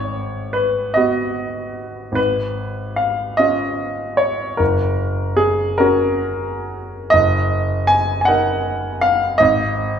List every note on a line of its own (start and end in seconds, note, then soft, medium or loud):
0.00 2.10 G#1 soft
0.00 0.54 C#5 medium
0.53 0.95 B4 medium
0.94 2.14 B3 soft
0.94 2.14 F#4 soft
0.94 2.17 D#5 medium
2.12 4.53 G#1 soft
2.12 2.97 B4 medium
2.96 3.38 F5 medium
3.37 4.56 C#4 soft
3.37 4.56 F4 soft
3.37 4.19 D#5 medium
4.17 4.59 C#5 medium
4.57 7.09 F#1 soft
4.57 5.38 A#4 medium
5.37 5.78 G#4 medium
5.78 7.09 C#4 soft
5.78 7.10 F#4 soft
5.78 7.12 A#4 medium
7.10 9.37 F#1 medium
7.10 7.89 D#5 medium
7.87 8.20 G#5 medium
8.21 8.28 G#5 medium
8.25 9.36 D#4 soft
8.25 9.36 A#4 soft
8.25 9.02 F#5 medium
9.01 9.39 F5 medium
9.38 9.99 G#1 medium
9.38 9.99 D#5 medium